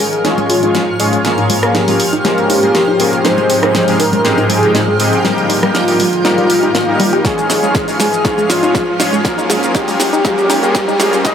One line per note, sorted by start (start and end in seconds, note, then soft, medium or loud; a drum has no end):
0.00 1.23 G#2 medium
0.00 11.21 F3 medium
0.00 1.23 F4 medium
0.00 0.45 G#4 medium
0.00 1.23 C#5 medium
0.00 11.35 F6 medium
0.00 open hi-hat loud
0.00 riser medium
0.13 closed hi-hat medium
0.25 0.60 G#3 medium
0.25 0.60 C#4 medium
0.25 0.34 D#4 medium
0.25 0.60 F4 medium
0.25 0.60 G#4 medium
0.25 0.60 C#5 loud
0.25 snare soft
0.25 closed hi-hat medium
0.38 0.46 G#3 medium
0.38 closed hi-hat soft
0.50 0.95 F4 medium
0.50 open hi-hat loud
0.63 0.80 G#3 medium
0.63 0.80 C#4 medium
0.63 0.71 D#4 medium
0.63 0.80 F4 medium
0.63 0.80 G#4 medium
0.63 0.80 C#5 medium
0.63 closed hi-hat soft
0.75 0.84 G#3 medium
0.75 snare soft
0.75 closed hi-hat medium
1.00 1.18 G#3 medium
1.00 1.18 C#4 medium
1.00 1.09 D#4 medium
1.00 1.18 F4 medium
1.00 1.18 G#4 medium
1.00 1.18 C#5 loud
1.00 open hi-hat loud
1.13 1.21 G#3 medium
1.13 closed hi-hat medium
1.25 9.21 G#2 medium
1.25 1.60 A#3 medium
1.25 1.60 C#4 medium
1.25 3.23 C#4 medium
1.25 1.60 F4 medium
1.25 1.60 G#4 medium
1.25 1.60 A#4 medium
1.25 3.23 C5 medium
1.25 snare soft
1.25 closed hi-hat medium
1.38 1.46 D#4 medium
1.38 closed hi-hat soft
1.50 1.59 G#3 medium
1.50 open hi-hat loud
1.63 1.85 A#3 medium
1.63 1.85 C#4 medium
1.63 1.85 F4 medium
1.63 1.85 G#4 medium
1.63 1.85 A#4 medium
1.63 cross-stick medium
1.63 closed hi-hat medium
1.75 1.84 D#4 medium
1.75 3.26 G4 loud
1.75 snare medium
1.75 closed hi-hat medium
1.88 1.96 G#3 medium
1.88 1.99 A#3 medium
1.88 1.98 C#4 medium
1.88 1.99 F4 medium
1.88 1.99 G#4 medium
1.88 1.99 A#4 medium
1.88 open hi-hat medium
2.00 open hi-hat loud
2.13 2.21 D#4 medium
2.13 closed hi-hat medium
2.25 2.60 G#3 medium
2.25 2.34 G#3 medium
2.25 2.60 A#3 medium
2.25 2.60 C#4 medium
2.25 2.60 F4 medium
2.25 2.60 A#4 loud
2.25 snare medium
2.25 closed hi-hat medium
2.38 closed hi-hat soft
2.50 2.59 D#4 medium
2.50 open hi-hat loud
2.63 2.71 G#3 medium
2.63 2.81 A#3 medium
2.63 2.81 C#4 medium
2.63 2.81 F4 medium
2.63 2.81 G#4 medium
2.63 2.81 A#4 medium
2.63 closed hi-hat soft
2.75 snare medium
2.75 closed hi-hat medium
2.88 2.96 D#4 medium
3.00 3.09 G#3 medium
3.00 3.18 A#3 medium
3.00 3.18 C#4 medium
3.00 3.18 F4 medium
3.00 3.18 G#4 medium
3.00 3.18 A#4 loud
3.00 open hi-hat loud
3.13 closed hi-hat medium
3.25 3.60 G#3 medium
3.25 3.60 C4 medium
3.25 5.23 C4 medium
3.25 3.60 D#4 medium
3.25 3.34 D#4 medium
3.25 3.60 G4 medium
3.25 3.60 G#4 medium
3.25 3.90 C5 loud
3.25 7.21 G5 medium
3.25 snare medium
3.25 closed hi-hat medium
3.38 3.46 G#3 medium
3.38 closed hi-hat soft
3.50 open hi-hat loud
3.63 3.85 G#3 medium
3.63 3.85 C4 medium
3.63 3.85 D#4 medium
3.63 3.71 D#4 medium
3.63 3.85 G4 medium
3.63 3.85 G#4 medium
3.63 cross-stick medium
3.63 closed hi-hat soft
3.75 3.84 G#3 medium
3.75 snare medium
3.75 closed hi-hat medium
3.88 3.98 G#3 medium
3.88 3.98 C4 medium
3.88 3.98 D#4 medium
3.88 3.98 G4 medium
3.88 3.99 G#4 loud
3.88 open hi-hat medium
4.00 4.09 D#4 medium
4.00 4.45 A#4 medium
4.00 open hi-hat loud
4.13 4.21 G#3 medium
4.13 closed hi-hat medium
4.25 4.60 G#3 medium
4.25 4.60 C4 medium
4.25 4.60 D#4 medium
4.25 4.60 G4 medium
4.25 4.60 G#4 loud
4.25 snare medium
4.25 closed hi-hat medium
4.38 4.46 D#4 medium
4.38 closed hi-hat soft
4.50 4.59 G#3 medium
4.50 4.95 G#4 medium
4.50 open hi-hat loud
4.63 4.80 G#3 medium
4.63 4.80 C4 medium
4.63 4.80 D#4 medium
4.63 4.80 G4 medium
4.63 4.80 G#4 medium
4.63 closed hi-hat soft
4.75 4.84 D#4 medium
4.75 snare medium
4.75 closed hi-hat medium
4.88 4.96 G#3 medium
5.00 5.18 G#3 medium
5.00 5.18 C4 medium
5.00 5.18 D#4 medium
5.00 5.18 G4 medium
5.00 5.18 G#4 loud
5.00 open hi-hat loud
5.13 5.21 D#4 medium
5.13 closed hi-hat soft
5.25 5.60 G3 medium
5.25 5.34 G3 medium
5.25 5.60 A#3 medium
5.25 5.60 D#4 medium
5.25 7.23 D#4 medium
5.25 5.60 G4 medium
5.25 5.60 A#4 medium
5.25 snare medium
5.25 closed hi-hat medium
5.38 closed hi-hat soft
5.50 5.59 D#4 medium
5.50 open hi-hat loud
5.63 5.85 G3 medium
5.63 5.71 G3 medium
5.63 5.85 A#3 medium
5.63 5.85 D#4 medium
5.63 5.85 G4 medium
5.63 5.85 A#4 medium
5.63 cross-stick medium
5.63 closed hi-hat soft
5.75 7.15 F4 loud
5.75 snare medium
5.75 closed hi-hat medium
5.88 5.98 G3 medium
5.88 5.98 A#3 medium
5.88 5.98 D#4 medium
5.88 5.96 D#4 medium
5.88 5.98 G4 medium
5.88 5.98 A#4 loud
5.88 open hi-hat medium
6.00 6.09 G3 medium
6.00 open hi-hat loud
6.13 closed hi-hat medium
6.25 6.47 G3 medium
6.25 6.47 A#3 medium
6.25 6.47 D#4 medium
6.25 6.34 D#4 medium
6.25 6.47 G4 medium
6.25 6.47 A#4 loud
6.25 snare medium
6.25 closed hi-hat medium
6.38 6.46 G3 medium
6.38 closed hi-hat soft
6.50 6.68 G3 medium
6.50 6.68 A#3 medium
6.50 6.68 D#4 medium
6.50 6.68 G4 medium
6.50 6.68 A#4 loud
6.50 open hi-hat loud
6.63 6.74 D#4 medium
6.63 closed hi-hat soft
6.75 6.87 A#3 medium
6.75 snare medium
6.75 closed hi-hat medium
6.88 7.22 G3 medium
6.88 7.22 A#3 medium
6.88 7.22 D#4 medium
6.88 7.22 G4 medium
6.88 7.22 A#4 medium
7.00 7.12 G3 loud
7.00 open hi-hat loud
7.13 7.21 G4 loud
7.13 closed hi-hat soft
7.25 7.34 G#3 medium
7.25 7.60 G#3 medium
7.25 7.60 C#4 medium
7.25 11.21 C#4 medium
7.25 7.60 F4 medium
7.25 9.23 F4 medium
7.25 7.60 G#4 medium
7.25 7.90 G#4 loud
7.25 7.60 C#5 medium
7.25 kick loud
7.25 snare medium
7.25 closed hi-hat medium
7.25 shaker soft
7.38 closed hi-hat soft
7.38 shaker soft
7.50 7.59 D#4 medium
7.50 snare medium
7.50 open hi-hat loud
7.50 shaker medium
7.63 7.85 G#3 medium
7.63 7.71 G#3 medium
7.63 7.85 C#4 medium
7.63 7.85 F4 medium
7.63 7.85 G#4 medium
7.63 7.85 C#5 medium
7.63 closed hi-hat soft
7.63 shaker soft
7.75 kick loud
7.75 snare medium
7.75 closed hi-hat medium
7.75 shaker soft
7.88 7.98 G#3 medium
7.88 7.99 C#4 medium
7.88 7.96 D#4 medium
7.88 7.98 F4 medium
7.88 7.99 G#4 medium
7.88 7.98 C#5 medium
7.88 open hi-hat medium
7.88 shaker soft
8.00 8.09 G#3 medium
8.00 8.45 G#4 medium
8.00 snare medium
8.00 open hi-hat loud
8.00 shaker medium
8.13 closed hi-hat medium
8.13 shaker soft
8.25 8.60 G#3 medium
8.25 8.60 C#4 medium
8.25 8.34 D#4 medium
8.25 8.60 F4 medium
8.25 8.60 G#4 medium
8.25 8.60 C#5 loud
8.25 kick loud
8.25 snare medium
8.25 closed hi-hat medium
8.25 shaker soft
8.38 8.46 G#3 medium
8.38 closed hi-hat soft
8.38 shaker soft
8.50 8.95 F4 loud
8.50 snare medium
8.50 open hi-hat loud
8.50 shaker medium
8.63 8.80 G#3 medium
8.63 8.80 C#4 medium
8.63 8.71 D#4 medium
8.63 8.80 F4 medium
8.63 8.81 G#4 medium
8.63 8.80 C#5 medium
8.63 closed hi-hat soft
8.63 shaker soft
8.75 8.84 G#3 medium
8.75 kick loud
8.75 snare medium
8.75 closed hi-hat medium
8.75 shaker soft
9.00 9.18 G#3 medium
9.00 9.18 C#4 medium
9.00 9.09 D#4 medium
9.00 9.18 F4 medium
9.00 9.18 G#4 medium
9.00 9.18 C#5 loud
9.00 snare medium
9.00 open hi-hat loud
9.00 shaker medium
9.13 9.21 G#3 medium
9.13 closed hi-hat soft
9.13 shaker soft
9.25 11.35 G#2 medium
9.25 9.60 A#3 medium
9.25 9.60 C#4 medium
9.25 9.60 F4 medium
9.25 9.60 G#4 medium
9.25 9.60 A#4 medium
9.25 11.35 C5 medium
9.25 kick loud
9.25 snare medium
9.25 closed hi-hat medium
9.25 shaker soft
9.38 9.46 D#4 medium
9.38 closed hi-hat soft
9.38 shaker soft
9.50 9.59 G#3 medium
9.50 snare medium
9.50 open hi-hat loud
9.50 shaker medium
9.63 9.85 A#3 medium
9.63 9.85 C#4 medium
9.63 9.85 F4 medium
9.63 9.85 G#4 medium
9.63 9.85 A#4 medium
9.63 closed hi-hat soft
9.63 shaker soft
9.75 9.84 D#4 medium
9.75 11.15 G4 loud
9.75 kick loud
9.75 snare medium
9.75 closed hi-hat medium
9.75 shaker soft
9.88 9.96 G#3 medium
9.88 9.99 A#3 medium
9.88 9.99 C#4 medium
9.88 9.99 F4 medium
9.88 9.99 G#4 medium
9.88 9.99 A#4 loud
9.88 open hi-hat medium
9.88 shaker soft
10.00 snare medium
10.00 open hi-hat loud
10.00 shaker medium
10.13 10.21 D#4 medium
10.13 closed hi-hat medium
10.13 shaker soft
10.25 10.34 G#3 medium
10.25 10.60 G#3 medium
10.25 10.60 A#3 medium
10.25 10.60 C#4 medium
10.25 10.60 F4 medium
10.25 10.60 A#4 loud
10.25 kick loud
10.25 snare medium
10.25 closed hi-hat medium
10.25 shaker soft
10.38 closed hi-hat soft
10.38 shaker soft
10.50 10.59 D#4 medium
10.50 snare medium
10.50 open hi-hat loud
10.50 shaker medium
10.63 10.71 G#3 medium
10.63 10.81 A#3 medium
10.63 10.81 C#4 medium
10.63 10.81 F4 medium
10.63 10.81 G#4 medium
10.63 10.81 A#4 medium
10.63 closed hi-hat soft
10.63 shaker soft
10.75 kick loud
10.75 snare medium
10.75 closed hi-hat medium
10.75 shaker soft
10.88 10.96 D#4 medium
10.88 shaker soft
11.00 11.09 G#3 medium
11.00 11.18 A#3 medium
11.00 11.18 C#4 medium
11.00 11.18 F4 medium
11.00 11.18 G#4 medium
11.00 11.18 A#4 loud
11.00 snare medium
11.00 open hi-hat loud
11.00 shaker medium
11.13 closed hi-hat medium
11.13 shaker soft
11.25 11.35 G#3 medium
11.25 11.35 C4 medium
11.25 11.35 D#4 medium
11.25 11.34 D#4 medium
11.25 11.35 G4 medium
11.25 11.35 G#4 medium
11.25 11.35 D#5 loud
11.25 kick loud
11.25 snare medium
11.25 closed hi-hat medium
11.25 shaker soft